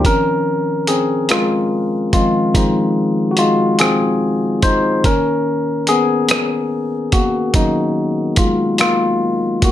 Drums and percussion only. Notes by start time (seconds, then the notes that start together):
0.05 kick, closed hi-hat
0.87 closed hi-hat
1.29 cross-stick, closed hi-hat
2.13 kick, closed hi-hat
2.55 kick, closed hi-hat
3.37 closed hi-hat
3.79 cross-stick, closed hi-hat
4.62 kick, closed hi-hat
5.04 kick, closed hi-hat
5.87 closed hi-hat
6.29 cross-stick, closed hi-hat
7.12 kick, closed hi-hat
7.54 kick, closed hi-hat
8.36 kick, closed hi-hat
8.78 cross-stick, closed hi-hat
9.62 kick, closed hi-hat